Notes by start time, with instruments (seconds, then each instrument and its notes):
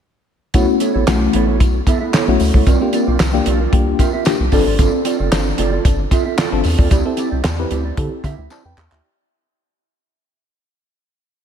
0.54 analog synth bass B1, fm electric piano A3 C#4 E4 F#4, clean electric guitar B3 E4 A4 C#5, kick, closed hi-hat, tambourine
0.68 muted clean electric guitar stroke
0.80 clean electric guitar B3 E4 A4 C#5, closed hi-hat, tambourine
0.94 analog synth bass A1, clean electric guitar B3 E4 A4 C#5
1.07 analog synth bass B1, fm electric piano A3 C#4 E4 F#4, snare, clap, closed hi-hat, tambourine
1.21 muted clean electric guitar stroke
1.33 analog synth bass A1, clean electric guitar B3 E4 A4 C#5, closed hi-hat
1.47 clean electric guitar B3 E4 A4 C#5
1.60 analog synth bass B1, muted clean electric guitar stroke, kick, closed hi-hat, tambourine
1.74 muted clean electric guitar stroke
1.87 clean electric guitar B3 E4 A4 E5, kick, closed hi-hat, tambourine
2.00 clean electric guitar B3 E4 A4 E5
2.13 clean electric guitar B3 E4 A4 C#5, snare, clap, closed hi-hat, tambourine
2.28 analog synth bass B1, fm electric piano A3 C#4 E4 F#4, muted clean electric guitar stroke
2.40 analog synth bass D2, muted clean electric guitar stroke, open hi-hat, tambourine
2.54 analog synth bass C#2, clean electric guitar B3 E4 A4 C#5, kick
2.67 analog synth bass C2, clean electric guitar C4 F4 A#4 D5, kick, closed hi-hat, tambourine
2.81 fm electric piano A#3 D4 F4 G4, muted clean electric guitar stroke
2.93 clean electric guitar C4 F4 A#4 D5, closed hi-hat, tambourine
3.07 analog synth bass B1, clean electric guitar C4 F4 A#4 D5
3.19 analog synth bass C2, snare, clap, closed hi-hat, tambourine
3.33 fm electric piano A#3 D4 F4 G4, muted clean electric guitar stroke
3.46 analog synth bass B1, clean electric guitar C4 F4 A#4 D5, closed hi-hat, tambourine
3.60 clean electric guitar C4 F4 A#4 D5
3.72 analog synth bass C2, fm electric piano A#3 D4 F4 G4, kick, closed hi-hat
3.87 muted clean electric guitar stroke
3.99 clean electric guitar C4 F4 A#4 E5, kick, closed hi-hat, tambourine
4.13 clean electric guitar C4 F4 A#4 E5
4.25 fm electric piano A#3 D4 F4 G4, muted clean electric guitar stroke, snare, clap, closed hi-hat, tambourine
4.39 analog synth bass C2, muted clean electric guitar stroke
4.52 analog synth bass G1, clean electric guitar C4 F4 A4 D5, fm electric piano C4 D4 F4 A4, kick, open hi-hat, tambourine
4.66 analog synth bass G#1, clean electric guitar C4 F4 A4 D5
4.78 analog synth bass G1, clean electric guitar C4 F4 A4 D5, kick, closed hi-hat, tambourine
4.93 muted clean electric guitar stroke
5.05 clean electric guitar C4 F4 A4 D5, closed hi-hat, tambourine
5.19 analog synth bass F#1, clean electric guitar C4 F4 A4 D5
5.32 analog synth bass G1, fm electric piano C4 D4 F4 A4, snare, clap, closed hi-hat, tambourine
5.46 muted clean electric guitar stroke
5.58 analog synth bass F#1, clean electric guitar C4 F4 A4 D5, closed hi-hat, tambourine
5.72 clean electric guitar C4 F4 A4 D5
5.85 analog synth bass G1, muted clean electric guitar stroke, kick, closed hi-hat, tambourine
5.99 muted clean electric guitar stroke
6.11 clean electric guitar C4 F4 A4 E5, kick, closed hi-hat, tambourine
6.25 clean electric guitar C4 F4 A4 E5
6.38 clean electric guitar C4 F4 A4 D5, snare, clap, closed hi-hat, tambourine
6.52 analog synth bass G1, fm electric piano C4 D4 F4 A4, muted clean electric guitar stroke
6.64 analog synth bass E2, muted clean electric guitar stroke, open hi-hat, tambourine
6.78 analog synth bass D#2, clean electric guitar C4 F4 A4 D5, kick
6.91 analog synth bass D2, clean electric guitar C4 E4 G4 D5, kick, closed hi-hat, tambourine
7.05 fm electric piano C4 E4 G4 A4, muted clean electric guitar stroke
7.17 clean electric guitar C4 E4 G4 D5, closed hi-hat, tambourine
7.31 analog synth bass C2, clean electric guitar C4 E4 G4 D5
7.44 analog synth bass E2, muted clean electric guitar stroke, snare, clap, closed hi-hat, tambourine
7.58 fm electric piano C4 E4 G4 B4, muted clean electric guitar stroke
7.70 analog synth bass D2, clean electric guitar C4 E4 G4 D5, closed hi-hat, tambourine
7.85 clean electric guitar C4 E4 G4 D5
7.97 analog synth bass D3, fm electric piano C4 E4 G4 A4, muted clean electric guitar stroke, kick, closed hi-hat
8.11 muted clean electric guitar stroke
8.23 analog synth bass D3, clean electric guitar C4 E4 G4 E5, kick, closed hi-hat, tambourine
8.37 analog synth bass D2, clean electric guitar C4 E4 G4 E5
8.50 clean electric guitar C4 E4 G4 D5, fm electric piano C5 A5, clap, tambourine
8.64 analog synth bass F2, fm electric piano B4 G5, muted clean electric guitar stroke
8.77 analog synth bass E2, muted clean electric guitar stroke, clap, tambourine
8.91 analog synth bass D#2, clean electric guitar C4 E4 G4 D5, fm electric piano G4 E5, clap